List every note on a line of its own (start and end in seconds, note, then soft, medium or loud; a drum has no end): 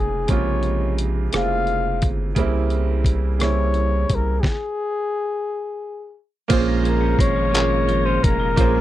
0.00 0.27 F1 medium
0.00 0.28 C#3 medium
0.00 0.29 G#3 medium
0.00 0.30 A#3 medium
0.00 1.36 C4 medium
0.00 0.20 D#4 medium
0.00 0.32 F4 medium
0.00 0.32 G#4 medium
0.28 1.29 A#1 medium
0.28 1.23 C3 medium
0.28 1.21 C#3 medium
0.28 1.22 G#3 medium
0.28 1.22 A#3 medium
0.28 0.99 C#5 medium
0.28 kick medium
0.28 closed hi-hat medium
0.32 1.23 F4 medium
0.63 closed hi-hat soft
0.98 closed hi-hat medium
1.32 2.05 F1 medium
1.32 2.25 C#3 medium
1.32 2.25 G#3 medium
1.32 2.26 A#3 medium
1.32 2.27 C4 medium
1.32 cross-stick medium
1.32 closed hi-hat medium
1.36 1.41 E4 soft
1.36 2.08 F5 medium
1.42 2.30 F4 medium
1.67 closed hi-hat soft
2.02 2.34 G1 medium
2.02 kick medium
2.02 closed hi-hat medium
2.35 4.05 C2 loud
2.35 3.28 C#3 medium
2.35 3.29 G3 medium
2.35 3.29 A#3 medium
2.35 3.30 C4 medium
2.35 kick medium
2.35 closed hi-hat medium
2.40 3.31 E4 medium
2.70 closed hi-hat soft
3.04 kick medium
3.04 closed hi-hat medium
3.38 4.32 C#3 medium
3.38 4.32 G3 medium
3.38 4.33 A#3 medium
3.38 4.33 C4 medium
3.38 cross-stick medium
3.38 closed hi-hat medium
3.43 4.34 E4 medium
3.43 4.16 C#5 medium
3.74 closed hi-hat soft
4.09 4.41 C2 medium
4.09 kick medium
4.09 closed hi-hat medium
4.15 4.42 A#4 medium
4.41 4.50 G4 medium
4.41 kick medium
4.41 snare medium
4.48 6.18 G#4 medium
6.48 7.15 A#1 loud
6.48 7.50 A#2 medium
6.48 7.42 A#3 medium
6.48 6.56 C4 medium
6.48 7.43 F4 medium
6.48 8.81 G#4 medium
6.48 7.43 G#4 medium
6.48 8.81 F5 medium
6.48 8.54 A#5 medium
6.48 kick loud
6.48 closed hi-hat medium
6.48 crash medium
6.53 7.46 C#4 medium
6.53 7.44 C5 loud
6.68 7.18 G#3 medium
6.83 7.35 F3 medium
6.83 closed hi-hat medium
6.88 7.22 A#4 medium
7.01 8.06 C#4 medium
7.19 8.19 G#1 medium
7.19 7.67 G#3 medium
7.19 8.07 C#5 loud
7.19 kick medium
7.19 closed hi-hat medium
7.36 7.87 F3 medium
7.51 8.55 A#2 medium
7.51 8.45 A#3 medium
7.51 8.46 C#4 medium
7.51 8.46 F4 medium
7.51 closed hi-hat medium
7.56 8.47 G#4 medium
7.56 8.48 A#4 medium
7.56 clap loud
7.69 8.21 G#3 medium
7.88 8.38 F3 medium
7.88 closed hi-hat soft
8.05 8.81 C#4 medium
8.05 8.25 C5 medium
8.23 8.55 F1 medium
8.23 8.74 G#3 medium
8.23 8.81 A#4 medium
8.23 kick loud
8.23 closed hi-hat medium
8.40 8.81 F3 medium
8.56 8.81 A#1 loud
8.56 8.81 A#2 medium
8.56 8.81 A#3 medium
8.56 8.81 C#4 medium
8.56 8.81 F4 medium
8.56 8.81 G#4 medium
8.56 8.81 G#5 medium
8.56 kick loud
8.56 closed hi-hat medium
8.61 8.81 C5 medium
8.75 8.81 G#3 medium